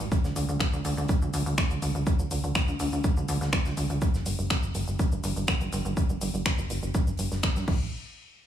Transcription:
0.00 closed hi-hat, shaker
0.12 kick, closed hi-hat, shaker
0.24 analog synth bass D2, snare, shaker
0.36 analog synth bass D2, closed hi-hat, open hi-hat, shaker
0.49 analog synth bass D2, shaker
0.60 finger snap, kick, snare, closed hi-hat, shaker
0.73 analog synth bass D2, shaker
0.85 analog synth bass D2, closed hi-hat, open hi-hat, shaker
0.97 analog synth bass D2, shaker
1.08 kick, closed hi-hat, shaker
1.22 analog synth bass D2, shaker
1.34 analog synth bass D2, closed hi-hat, open hi-hat, shaker
1.46 analog synth bass D2, closed hi-hat, shaker
1.58 finger snap, kick, snare, closed hi-hat, shaker
1.71 analog synth bass D2, closed hi-hat, shaker
1.82 analog synth bass D2, closed hi-hat, open hi-hat, shaker
1.95 analog synth bass D2, shaker
2.06 kick, closed hi-hat, shaker
2.19 analog synth bass D2, shaker
2.31 analog synth bass D2, open hi-hat, shaker
2.44 analog synth bass D2, closed hi-hat, shaker
2.55 finger snap, kick, snare, closed hi-hat, shaker
2.68 analog synth bass D2, shaker
2.79 analog synth bass D2, closed hi-hat, open hi-hat, shaker
2.92 analog synth bass D2, shaker
3.04 kick, closed hi-hat, shaker
3.17 analog synth bass D2, shaker
3.28 analog synth bass D2, closed hi-hat, open hi-hat, shaker
3.41 analog synth bass D2, snare, shaker
3.52 finger snap, kick, snare, closed hi-hat, shaker
3.65 analog synth bass D2, snare, shaker
3.77 analog synth bass D2, closed hi-hat, open hi-hat, shaker
3.90 analog synth bass D2, closed hi-hat, shaker
4.02 kick, closed hi-hat, shaker
4.14 analog synth bass G1, snare, shaker
4.26 analog synth bass G1, closed hi-hat, open hi-hat, shaker
4.39 analog synth bass G1, shaker
4.50 finger snap, kick, snare, closed hi-hat, shaker
4.63 analog synth bass G1, shaker
4.74 analog synth bass G1, closed hi-hat, open hi-hat, shaker
4.88 analog synth bass G1, shaker
4.99 kick, closed hi-hat, shaker
5.12 analog synth bass G1, shaker
5.24 analog synth bass G1, closed hi-hat, open hi-hat, shaker
5.36 analog synth bass G1, closed hi-hat, shaker
5.47 finger snap, kick, snare, closed hi-hat, shaker
5.61 analog synth bass G1, closed hi-hat, shaker
5.73 analog synth bass G1, closed hi-hat, open hi-hat, shaker
5.85 analog synth bass G1, shaker
5.97 kick, closed hi-hat, shaker
6.10 analog synth bass G1, shaker
6.21 analog synth bass G1, open hi-hat, shaker
6.34 analog synth bass G1, closed hi-hat, shaker
6.46 finger snap, kick, snare, closed hi-hat, shaker
6.58 analog synth bass G1, shaker
6.70 analog synth bass G1, closed hi-hat, open hi-hat, shaker
6.83 analog synth bass G1, shaker
6.94 kick, closed hi-hat, shaker
7.07 analog synth bass G1, shaker
7.17 analog synth bass G1, closed hi-hat, open hi-hat, shaker
7.32 analog synth bass G1, snare, shaker
7.43 finger snap, kick, snare, closed hi-hat, shaker
7.56 analog synth bass G2, snare, shaker
7.68 analog synth bass A1, kick, crash

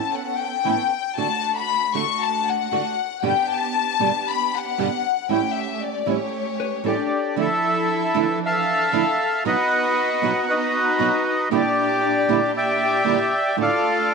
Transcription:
Already playing: string section B3 C#4 A4, violin section A5
0.14 violin section F#5
0.40 violin section G5
0.65 nylon-string guitar A2 E3 B3 C#4 E4, string section B3 C#4 A4
1.16 nylon-string guitar D3 A3 D4 F#4, string section A3 D4 F#4, violin section A5
1.58 violin section B5
1.94 nylon-string guitar D3 A3 D4 F#4, string section A3 D4 F#4, violin section C#6
2.21 violin section A5
2.48 violin section F#5
2.71 nylon-string guitar D3 A3 D4 F#4, string section A3 D4 F#4
3.23 nylon-string guitar G2 B2 D3 G3 B3 G4, string section B3 D4 G4, violin section G5
3.52 violin section A5
3.99 nylon-string guitar G2 B2 D3 G3 B3 G4, string section B3 D4 G4
4.30 violin section B5
4.54 violin section F#5
4.78 nylon-string guitar G2 B2 D3 G3 B3 G4, string section B3 D4 G4
5.29 nylon-string guitar A2 E3 G3 C#4 E4, string section A3 C#4 G4, violin section G5
5.56 violin section E5
5.81 violin section D5
6.06 nylon-string guitar A2 E3 G3 C#4 E4, string section A3 C#4 G4, violin section C#5
6.60 hollow-body jazz guitar B4
6.84 nylon-string guitar A2 E3 G3 C#4 E4, string section A3 C#4 G4, violin section D4, bandoneon G4, hollow-body jazz guitar A4
6.88 bandoneon D5
7.36 nylon-string guitar D3 F3 A3 D4 E4, string section F3 D4 E4
7.40 violin section E4, bandoneon A4 E5
8.14 nylon-string guitar D3 F3 A3 D4 E4, string section E3 F3 D4
8.45 violin section A4, bandoneon E5 F5 A5
8.92 nylon-string guitar D3 F3 A3 D4 E4, string section F3 D4 E4
9.44 nylon-string guitar B2 F#3 B3 D#4 F#4, string section B3 D#4 F#4, violin section F#4, bandoneon B4 D#5
9.49 bandoneon F#5
10.21 nylon-string guitar B2 F#3 B3 D#4 F#4, string section B3 D#4 F#4
10.49 violin section D#4, bandoneon F#4 B4 D#5
10.99 nylon-string guitar B2 F#3 B3 D#4 F#4, string section B3 D#4 F#4
11.50 string section A#2 D4 E4 G4, nylon-string guitar A#2 D3 G3 D4 E4, violin section D4, bandoneon G4 D5
12.28 string section A#2 D4 E4 G4, nylon-string guitar A#2 D3 G3 D4 E4
12.57 violin section G4, bandoneon D5 E5 G5
13.04 nylon-string guitar A#2 D3 G3 D4 E4, string section A#2 D4 E4 G4
13.57 nylon-string guitar A2 D3 A3 D4 F4, string section A3 D4 F4 A4
13.61 violin section F4, bandoneon A4 D5 F5

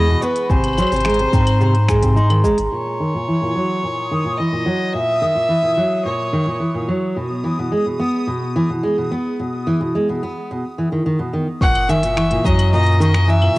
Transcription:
Already playing: sub bass E2, violin D#5, glockenspiel B5
0.09 steel-string acoustic guitar B2
0.22 steel-string acoustic guitar B3, violin B4, glockenspiel C#6, cabasa
0.36 closed hi-hat, cabasa
0.50 sub bass G#1, steel-string acoustic guitar C3, violin C5, glockenspiel G#5, kick, cabasa
0.64 closed hi-hat, claves
0.68 claves
0.73 claves
0.77 steel-string acoustic guitar F#3, glockenspiel C6, cabasa, claves
0.82 claves
0.87 claves
0.91 sub bass G#1, steel-string acoustic guitar C3, closed hi-hat, cabasa
0.96 closed hi-hat
1.00 closed hi-hat
1.05 steel-string acoustic guitar G#3, glockenspiel A#5, finger snap, closed hi-hat, cabasa
1.10 closed hi-hat
1.14 closed hi-hat
1.19 steel-string acoustic guitar C3, closed hi-hat
1.33 sub bass G#2, steel-string acoustic guitar C4, glockenspiel A#5, kick, cabasa
1.47 closed hi-hat, cabasa, claves
1.61 steel-string acoustic guitar C3, glockenspiel C6, cabasa
1.75 closed hi-hat
1.89 steel-string acoustic guitar G#3, glockenspiel G#5, finger snap, kick, cabasa
2.02 steel-string acoustic guitar C3, kick, closed hi-hat, cabasa
2.16 steel-string acoustic guitar D#4, glockenspiel C6, cabasa
2.30 steel-string acoustic guitar D#3, closed hi-hat, claves
2.44 sub bass F#1, steel-string acoustic guitar G#3, glockenspiel A#5, cabasa
2.58 sub bass G#1, closed hi-hat, cabasa
2.72 steel-string acoustic guitar A#2, violin C#5, synth texture D#6
3.00 steel-string acoustic guitar D#3
3.14 steel-string acoustic guitar A#2
3.28 steel-string acoustic guitar E3
3.42 steel-string acoustic guitar A#2
3.55 steel-string acoustic guitar F#3
3.83 steel-string acoustic guitar A#2
4.11 steel-string acoustic guitar D#3
4.25 steel-string acoustic guitar A#2
4.37 steel-string acoustic guitar E3, violin D#5
4.52 steel-string acoustic guitar A#2
4.66 steel-string acoustic guitar F#3
4.93 steel-string acoustic guitar A#2, violin E5
5.22 steel-string acoustic guitar D#3
5.35 steel-string acoustic guitar A#2
5.49 steel-string acoustic guitar E3
5.63 steel-string acoustic guitar A#2
5.77 steel-string acoustic guitar F#3
6.05 steel-string acoustic guitar A#2, violin C#5
6.33 steel-string acoustic guitar D#3
6.47 steel-string acoustic guitar A#2
6.60 steel-string acoustic guitar E3
6.74 steel-string acoustic guitar A#2
6.89 steel-string acoustic guitar F#3
7.17 steel-string acoustic guitar B2
7.44 steel-string acoustic guitar E3
7.59 steel-string acoustic guitar B2
7.72 steel-string acoustic guitar G#3
7.86 steel-string acoustic guitar B2
8.00 steel-string acoustic guitar B3
8.27 steel-string acoustic guitar B2
8.56 steel-string acoustic guitar E3
8.69 steel-string acoustic guitar B2
8.83 steel-string acoustic guitar G#3
8.98 steel-string acoustic guitar B2
9.11 steel-string acoustic guitar B3, cabasa
9.39 steel-string acoustic guitar B2
9.54 cabasa
9.67 steel-string acoustic guitar E3
9.81 steel-string acoustic guitar B2, cabasa
9.95 steel-string acoustic guitar G#3
10.09 steel-string acoustic guitar B2
10.23 steel-string acoustic guitar B3, cabasa
10.37 cabasa
10.51 steel-string acoustic guitar B2
10.78 steel-string acoustic guitar E3, cabasa
10.92 steel-string acoustic guitar D#3, cabasa
11.06 steel-string acoustic guitar D#3
11.19 steel-string acoustic guitar B2
11.33 steel-string acoustic guitar D#3
11.61 sub bass F#1, steel-string acoustic guitar A#2, violin F#5, glockenspiel C#6, synth texture D#6, kick, cabasa
11.75 closed hi-hat, claves
11.89 steel-string acoustic guitar D#3, violin E5, glockenspiel G#5, cabasa
12.03 steel-string acoustic guitar A#2, closed hi-hat, cabasa
12.17 steel-string acoustic guitar E3, glockenspiel C#6, finger snap
12.31 steel-string acoustic guitar A#2, closed hi-hat
12.44 sub bass F#2, steel-string acoustic guitar F#3, violin D#5, glockenspiel A#5, kick, cabasa
12.59 closed hi-hat, cabasa, claves
12.72 steel-string acoustic guitar A#2, violin D#5, glockenspiel A#5, cabasa
12.83 closed hi-hat, cabasa
12.92 cabasa
13.00 steel-string acoustic guitar D#3, violin D#5, glockenspiel C#6, cabasa
13.14 steel-string acoustic guitar A#2, finger snap, cabasa
13.28 steel-string acoustic guitar E3, violin E5, glockenspiel G#5, cabasa
13.42 steel-string acoustic guitar A#2, claves

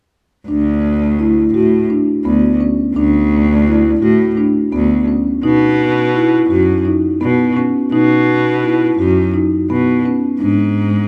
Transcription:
0.47 cello D2, marimba D4
1.19 marimba E4
1.54 cello A2, marimba F#4
1.90 marimba D4
2.24 cello D2, marimba B3
2.61 marimba C#4
2.95 cello D2, marimba D4
3.67 marimba E4
4.02 cello A2, marimba F#4
4.37 marimba D4
4.72 cello D2, marimba B3
5.08 marimba C#4
5.43 cello B2, marimba D#4
6.14 marimba E4
6.50 cello F#2, marimba F#4
6.85 marimba D#4
7.21 cello B2, marimba B3
7.57 marimba C#4
7.92 cello B2, marimba D#4
8.63 marimba E4
8.99 cello F#2, marimba F#4
9.34 marimba D#4
9.69 cello B2, marimba B3
10.05 marimba C#4
10.40 cello G#2, marimba D4

